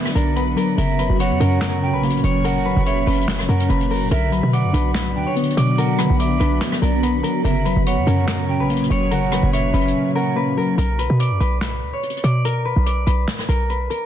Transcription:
Already playing: D3 F#3 B3 D4 F#4 B4 D5 E5
0.06 cross-stick
0.15 B1 D4 A#4 D5, closed hi-hat
0.36 B3 B4, closed hi-hat
0.56 F#3 A#4, closed hi-hat
0.78 F#1 A#2 C#3 A#4 E5, closed hi-hat
0.98 F#3 B4, closed hi-hat
1.10 F#1
1.20 C#5 F#5, closed hi-hat
1.31 F#2
1.40 F#2 C#4 A#4, closed hi-hat
1.61 A#4, snare, clap, closed hi-hat
1.82 C#4 G5
1.93 A#1 B4
2.03 A#3, closed hi-hat
2.10 closed hi-hat
2.17 closed hi-hat
2.24 F#1 F#3 C#5, closed hi-hat
2.44 C#3 A#4 F#5, closed hi-hat
2.65 F#3 B4
2.76 F#1
2.86 C#5 E5, closed hi-hat
3.07 F#1 C#4 B4, closed hi-hat, open hi-hat
3.14 closed hi-hat
3.21 closed hi-hat
3.28 snare, clap
3.39 cross-stick
3.49 F#2 C#4 A#4 F#5, closed hi-hat
3.60 closed hi-hat
3.69 F#1 A#3 B4, closed hi-hat
3.81 closed hi-hat
3.90 F#3 A#4, open hi-hat
4.11 B1 D3 B3 F#4 A#4 E5, closed hi-hat
4.32 F#3 B4, closed hi-hat
4.43 B2
4.53 D5 F#5, closed hi-hat
4.64 F#2
4.73 B1 D4 B4, closed hi-hat
4.95 snare, clap, closed hi-hat
5.15 D2 D4 G5
5.26 C#5
5.36 B3, closed hi-hat
5.43 closed hi-hat
5.50 closed hi-hat
5.57 B2 F#3 D5, closed hi-hat
5.78 D3 A#4 F#5, closed hi-hat
5.98 F#3 B4, cross-stick
6.10 B1
6.20 D5 E5, closed hi-hat
6.40 B1 D4 B4, closed hi-hat
6.61 snare, clap, closed hi-hat
6.72 cross-stick
6.82 B1 D4 A#4 D5, closed hi-hat
7.03 B3 B4, closed hi-hat
7.23 F#3 A#4, closed hi-hat
7.44 F#1 A#2 C#3 A#4 E5, closed hi-hat
7.65 F#3 B4, closed hi-hat
7.76 F#1
7.86 C#5 F#5, closed hi-hat
7.97 F#2
8.07 F#2 C#4 A#4, closed hi-hat
8.28 A#4, snare, clap, closed hi-hat
8.49 C#4 G5
8.60 A#1 B4
8.70 A#3, closed hi-hat
8.77 closed hi-hat
8.83 closed hi-hat
8.90 F#1 F#3 C#5, closed hi-hat
9.11 C#3 A#4 F#5, closed hi-hat
9.32 F#3 B4, cross-stick
9.43 F#1
9.53 C#5 E5, closed hi-hat
9.74 F#1 C#4 B4, closed hi-hat
9.81 closed hi-hat
9.88 closed hi-hat
10.15 C#4 A#4 F#5
10.35 A#3 B4
10.57 F#3 A#4
10.78 B1 A#4, closed hi-hat
10.99 B4, closed hi-hat
11.10 B2
11.20 D5, closed hi-hat
11.31 F#2
11.40 B1 B4, closed hi-hat
11.61 B4, snare, clap, closed hi-hat
11.82 D2
11.93 C#5
12.03 closed hi-hat
12.10 closed hi-hat
12.17 closed hi-hat
12.24 B2 D5, closed hi-hat
12.45 A#4, closed hi-hat
12.65 B4
12.76 B1
12.86 D5, closed hi-hat
13.06 B1 B4, closed hi-hat
13.28 snare, clap, closed hi-hat
13.39 cross-stick
13.48 B1 A#4, closed hi-hat
13.70 B4, closed hi-hat
13.90 A#4, closed hi-hat

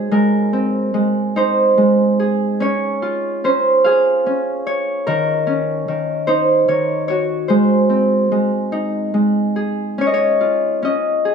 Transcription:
Already playing: G#3 D#4 G#4 C5
0.11 G#3 A#4
0.53 C4
0.94 G#3
1.36 D#4 C5
1.78 G#3
2.20 G#4
2.60 C#4 C#5
3.02 F4
3.44 C#4 C5
3.84 G#4 F5
4.26 C#4
4.67 C#5
5.07 D#3 A#4
5.47 C#4
5.88 D#3
6.27 D#4 C5
6.68 D#3 C#5
7.08 F#4 C#5
7.48 G#3 C5
7.89 C4
8.32 G#3
8.72 D#4
9.14 G#3
9.56 G#4
9.98 C#4 C#5
10.07 D#5
10.14 C#5
10.41 F4
10.82 C#4 D#5
11.25 G#4

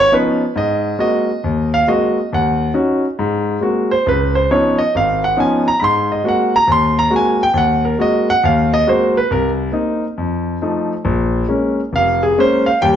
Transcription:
0.00 C#5
0.12 F3 B3 C#4 D#4 B4
0.56 G#2 D#5
0.99 G#3 A#3 C4 F#4 D#5
1.44 D#2
1.74 F5
1.88 G#3 A#3 C4 F#4 D#5
2.33 D#2 F#5
2.74 C#4 D#4 F#4
3.19 G#2
3.61 G#3 A#3 C4 F#4
3.91 C5
4.06 C#2 B4
4.35 C5
4.50 F3 B3 C#4 D#4 C#5
4.78 D#5
4.95 G#1 F5
5.24 F#5
5.37 F3 B3 C#4 D#4 G#5
5.68 A#5
5.80 G#2 B5
5.84 C6
6.12 D#5
6.24 G#3 A#3 C4 F#4
6.28 F#5
6.56 A#5
6.68 D#2
6.72 C6
6.99 A#5
7.10 G#3 A#3 C4 F#4
7.16 G#5
7.43 G5
7.54 D#2 F#5
7.85 A#4
7.99 G#3 A#3 C4 F#4 D#5
8.30 F#5
8.44 D#2 F5
8.74 D#5
8.87 G#3 A#3 C4 F#4 C5
9.17 B4
9.31 C2 A#4
9.72 A#3 C4 D#4
10.18 F2
10.62 F3 A3 D#4
11.05 A#1
11.49 G#3 A#3 C#4
11.93 F1 F5
12.23 G#4
12.38 G#3 A#3 C#4 C5
12.66 F5
12.82 D#2 G3 G5

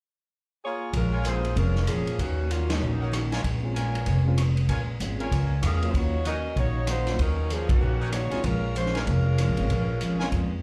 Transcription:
0.65 A#3 F4 G#4 C#5
0.93 A#1 A#2 F3 G#3 C#4 F4 A#4, kick, ride
1.12 F4 A#4 C#5 G#5
1.24 A#2 F3 G#3 A#3 C#4 F4 G#4 C5, hi-hat pedal, ride
1.45 ride
1.56 F1 A#2 F3 G#3 C4 C#4 F4 A#4, kick, ride
1.75 snare
1.86 A#2 F3 G#3 A#3 C#4 G#4, cross-stick, hi-hat pedal, ride
2.07 ride
2.19 D#2 D#3 A#3 C#4 F#4, kick, ride
2.51 D#3 F#3 A#3 C#4 F4 F#4, hi-hat pedal, ride
2.70 F#3 A#3 C#4 D#4, snare, ride
2.81 A#1 D#3 A#3 C#4 F#4
3.01 D#4 A#4 C#5 F#5
3.12 D#3 A#3 C#4 F#4, cross-stick, hi-hat pedal, ride
3.32 F4 A#4 C#5 G#5, snare, ride
3.44 A#1 A#2 G#3 C#4 F4, kick, ride
3.63 G#3 C4 C#4 F4
3.74 A#2 G#3 C#4 F4 A#4 C#5 G#5, hi-hat pedal, ride
3.78 F4
3.95 ride
4.06 F1 A#2 G#3, kick, ride
4.10 C#4 F4
4.26 G#3 C4 C#4 F4
4.37 A#2 G#3 C#4 F4, cross-stick, hi-hat pedal, ride
4.57 ride
4.69 A#1 A#2 G#3 C#4 F4 A#4 C#5 G#5, kick, ride
5.00 G#1 A#2 G#3 C#4 F4, hi-hat pedal, ride
5.18 G#3 C4 C#4 F4 A#4 C#5 G#5, ride
5.32 C#2 A#2 G#3 C#4 F4, kick, ride
5.62 E2 A#2 G#3 C#4 F4 G#4 A#4 F5, cross-stick, hi-hat pedal, ride
5.82 F#3 A#3 C#4 F4, ride
5.91 D#2 D#3 C5, kick, ride
5.95 A#3 C#4 D#4 F#4 C#5
6.24 D#3 A#3 C#4 D#4 F#4 A#4 C#5 D#5 F#5, hi-hat pedal, ride
6.56 A#1 D#3 A#3 C#4 D#4 F#4 C#5, kick, ride
6.87 D#3 A#3 C#4 D#4 F#4 C5, cross-stick, hi-hat pedal, ride
7.06 F#3 A#3 C#4 F4, snare, ride
7.19 D#2 D#3 F#3 A#3 C#4 D#4 F#4 A#4, kick, ride
7.50 D#3 F3 A#3 C#4 F#4 G#4, hi-hat pedal, ride
7.69 D#3 A#3 C#4 F#4, kick, ride
7.81 A#1 D#3 A#3 C#4 F#4
8.00 D#4 A#4 C#5 F#5
8.12 D#3 A#3 C#4 D#4 F#4 C#5, cross-stick, hi-hat pedal, ride
8.31 G#3 C4 C#4 F4 A#4 C#5 G#5, muted upright bass stroke, ride
8.43 A#1 A#2 F3 G#3 C#4 F4 A#4, kick, ride
8.75 A#2 F3 G#3 C#4 F4 C5, hi-hat pedal, ride
8.86 snare
8.94 G#3 C#4 F4 A#4 C#5 G#5, snare, ride
9.07 F1 A#2 F3 G#3 C#4, kick, ride
9.38 A#2 F3 G#3 C#4, cross-stick, hi-hat pedal, ride
9.48 A#1
9.57 G#1 G#3 C4 C#4 F4, ride
9.69 A#1 A#2 F3 G#3 C#4, kick, ride
10.01 G#1 A#2 F3 G#3 C#4, hi-hat pedal, ride
10.20 G#3 C4 C#4 F4 A#4 C#5 G#5, snare
10.32 F2 A#2 F3 G#3 C#4, kick, ride

